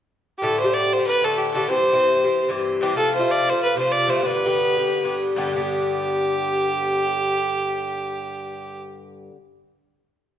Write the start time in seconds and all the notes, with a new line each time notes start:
0.38 A2 G4
0.43 D3 A3 G4 A4
0.60 C5
0.64 A2 D3 A3 G4
0.74 D5
0.93 C5
0.98 D3 A3 G4
1.07 B4
1.21 A2 D3 A3 G4 A4
1.38 G4
1.54 A2 D3 A3 G4 A4
1.68 G2 E3 C4 G4 C5
1.93 G2 E3 C4 G4
2.24 E3 C4 G4
2.48 G2 E3 C4 G4
2.81 G2 E3 C4 G4
2.95 C3 F3 A3 F4 A4
3.15 C5
3.19 C3 F3 A3 F4
3.31 D5
3.49 F3 A3 F4 C5
3.63 B4
3.75 C3 F3 A3 F4 C5
3.92 D5
4.07 C3 F3 A3 F4 C5
4.21 G2 D3 B3 G4
4.26 B4
4.46 G2 D3 B3 G4
4.77 D3 B3 G4
5.04 G2 D3 B3 G4
5.36 G2 D3 B3 G4
5.46 G2
5.52 D3 G4
5.56 B3
5.61 G4